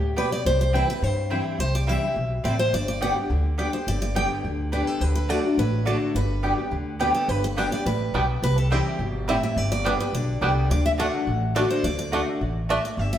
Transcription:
Already playing: D2 A2 G4
0.16 B2 B3 G4 B4 D5 G5
0.32 D5
0.45 C2 C3 C5
0.61 C5
0.73 E3 G3 C4 E4 B4 C5 G5
0.88 C4 E4 B4
1.02 G2 C5
1.30 E3 G3 C4 E4 C5 G5
1.59 C2 C3 C5
1.75 D5
1.87 E3 G3 C4 E4 C5 E5 G5
2.02 C4 E4
2.16 B1 B2
2.44 A1 A2 C4 E4 C5 D5 G5
2.59 C5
2.73 G1 G2 D5
2.88 D5
3.01 D3 G3 B3 G4 D5 F#5 G5
3.15 B3 G4
3.30 D2 D3
3.58 D3 G3 B3 G4 D5 G5
3.73 B3 G4 C5
3.87 G1 G2 D5
4.02 D5
4.15 D3 G3 B3 G4 D5 G5
4.44 D2 D3
4.72 D3 G3 B3 G4 B4 D5 G5
4.87 A4
5.01 D2 D3 B4
5.15 B4
5.29 D3 A3 D4 F#4 D5 A5
5.43 D4 F#4
5.57 A1 A2 B4
5.85 D3 A3 D4 F#4 A4 D5 A5
6.15 G1 G2 B4
6.43 D3 G3 B3 G4 D5 G5
6.57 B3 G4
6.71 D2 D3
6.99 D3 G3 B3 G4 B4 D5 G5
7.14 A4
7.28 G1 G2 B4
7.44 B4
7.56 D3 G3 B3 D4 G4 D5 G5
7.71 B3 G4 D5
7.86 A1 A2 B4
8.14 B1 B2 G3 B3 D4 G4 D5 G5
8.42 C2 C3 B4
8.58 A4
8.71 E3 G3 C4 E4 G4 C5 G5
8.99 G1 B2
9.28 A2 G3 C4 E4 C5 E5 G5
9.43 E5
9.56 G1 G2 D5
9.72 D5
9.84 D3 G3 B3 D4 G4 B4 D5 G5
9.99 B3 G4 B4
10.13 B1 D3 D5
10.41 C2 D3 G3 B3 D4 G4 D5 G5
10.70 D2 D3 D5
10.86 E5
10.98 D3 A3 D4 F#4 D5 F#5 A5
11.27 A1 A2
11.55 D3 A3 D4 F#4 D5 A5
11.70 C5
11.83 D2 D3 D5
11.99 D5
12.12 D3 A3 D4 F#4 D5 F#5 A5
12.41 A1 B2
12.69 A2 A3 D4 F#4 D5 E5 A5
12.85 D5
12.97 G1 G2 E5
13.13 E5

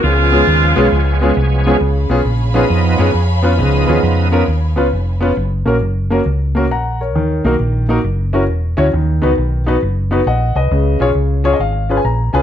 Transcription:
0.03 C#2 C#3 F3 G#3 B3 C#4 F4 G#4
0.31 G#3 B3 C#4 F4 G#4
0.47 D#2
0.76 B1 G#3 B3 C#4 F4 G#4
0.92 C#2
1.21 G#3 B3 C#4 F4 G#4
1.37 C2
1.66 G#3 B3 C#4 F4 G#4
1.81 C#2 C#3 C#5 F5 G#5 B5
2.10 B1 B3 C#4 F4 G#4
2.25 A#1
2.54 F3 B3 C#4 D#4 F4 G#4
2.70 F2
2.98 F#2 B3 C#4 F4 G#4
3.14 F2
3.42 B3 C#4 F4 B4
3.57 C#2 C#3 F3 B3 D#4
3.87 D#2 B3 C#4 F4 G#4
4.03 F2
4.32 F3 B3 C#4 D#4 F4 A#4
4.48 D#2
4.76 C#2 B3 C#4 F4 B4
4.93 F1
5.21 B3 C#4 F4 B4
5.37 F#1
5.65 A#1 A#3 C#4 F#4 A#4
5.81 F#1
6.10 A#3 C#4 F#4 A#4
6.26 C#2
6.55 A#3 C#4 F#4 A#4
6.71 A#1 F#5 A#5
7.01 A#4 C#5
7.15 D#2 D#3
7.44 B1 A#3 D#4 F#4 A#4
7.60 A#1
7.89 A#3 D#4 F#4 A#4
8.04 F#1
8.33 C#4 E4 F#4 A#4
8.49 E1
8.77 D2 C#4 E4 F#4 C#5
8.93 D#2 D#3
9.22 C#2 B3 D#4 F#4 B4
9.38 B1
9.66 B3 D#4 F#4 B4
9.82 F#1
10.11 B3 D#4 F#4 B4
10.26 A#1 D#5 F#5
10.55 C2 B4 D#5
10.71 C#2 C#3
11.00 B1 C#4 F4 G#4 C#5
11.15 C#2
11.44 C#4 F4 G#4 C#5
11.53 D#5
11.59 G#1 F5
11.89 C#4 F4 G#4 B4
11.97 G#5
12.05 A#1 A#5
12.33 C2 C#4 F4 G#4 B4 G#5

